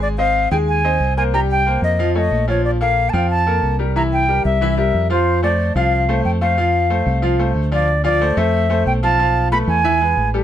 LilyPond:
<<
  \new Staff \with { instrumentName = "Flute" } { \time 4/4 \key f \major \tempo 4 = 184 d''8 f''4 g''8 aes''4. aes''8 | bes''8 g''4 ees''4 ees''4 cis''8 | d''8 f''8.~ f''32 a''32 g''8 a''4. r8 | bes''8 g''4 e''4 e''4 c''8~ |
c''8 d''4 f''4. g''8 f''8~ | f''2. r8 d''8~ | d''8 d''4 e''4. g''8 a''8~ | a''4 b''8 aes''2 r8 | }
  \new Staff \with { instrumentName = "Upright piano" } { \time 4/4 \key f \major <aes aes' aes''>8 <c' c'' ees''>4 <aes aes' aes''>4 <c' c'' ees''>4 <bes bes' c''>8 | <g g' g''>4 <bes bes' c''>4 <f f' f''>8 <a a' cis''>4 <f f' f''>8~ | <f f' f''>8 <bes a' bes'>4 <f f' f''>4 <bes a' bes'>4 <g g' bes'>8 | <e e' e''>4 <g g' bes'>4 <e e' e''>8 <g g' bes'>4 <f f' f''>8~ |
<f f' f''>8 <a a' c''>4 <f f' f''>4 <a a' c''>4 <a a' c''>8 | <f f' f''>4 <a a' c''>4 <f f' f''>8 <a a' c''>4 <f f' f''>8 | r8 <f f' f''>8 <a a' c''>8 <a a' c''>4 <a a' c''>4 <f f' f''>8 | <f f' f''>4 <a a' b'>4 <e e' e''>8 <gis gis' b'>4 <g g' a'>8 | }
  \new Staff \with { instrumentName = "Fingered electric bass" } { \clef bass \time 4/4 \key f \major aes,,4. ees,4. c,4~ | c,4. f,4. bes,,4~ | bes,,4. f,4. c,4~ | c,4. c,4. f,4~ |
f,4. c,4. f,4~ | f,4. c,4. d,4~ | d,4. f,4. b,,4~ | b,,4. e,4. a,,4 | }
>>